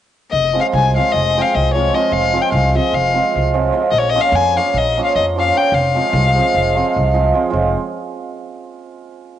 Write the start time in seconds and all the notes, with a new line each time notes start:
0.31 F1 D#5
0.53 F3 G#3 C4 F4
0.61 F5
0.73 C2 G#5
0.96 F3 G#3 C4 F4 F5
1.12 F1 D#5
1.37 F3 G#3 C4 F4 G5
1.42 F5
1.54 C2 D#5
1.74 F3 G#3 C4 F4 C#5
1.92 F3 G#3 C4 F4 D#5
2.12 F1 F5
2.33 F3 G#3 C4 F4
2.42 G5
2.52 C2 F5
2.75 F3 G#3 C4 F4 D#5
2.93 F1 F5
3.14 F3 G#3 C4 F4
3.35 C2
3.54 F3 G#3 C4 F4
3.73 F3 G#3 C4 F4
3.91 A#1 D#5
3.98 C#5
4.09 D#5
4.14 F3 A#3 C#4 F4
4.21 F5
4.32 F2 G#5
4.55 F3 A#3 C#4 F4 F5
4.74 A#1 D#5
4.97 F3 A#3 C#4 F4
5.05 F5
5.16 F2 D#5
5.36 F3 A#3 C#4 F4 F5
5.54 F3 A#3 C#4 F4 G5
5.72 F1 F5
5.95 F3 G#3 C4 F4
6.13 C2
6.35 F3 G#3 C4 F4
6.54 F1
6.75 F3 G#3 C4 F4
6.96 C2
7.14 F3 G#3 C4 F4
7.34 F3 G#3 C4 F4
7.50 F1 F3 G#3 C4 F4